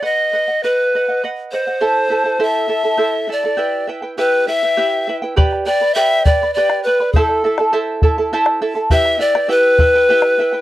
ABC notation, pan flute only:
X:1
M:6/8
L:1/8
Q:3/8=68
K:Em
V:1 name="Pan flute"
^d2 B2 z c- | c2 e3 d- | d z B e2 z | z d e d d B |
A2 z4 | e d B4 |]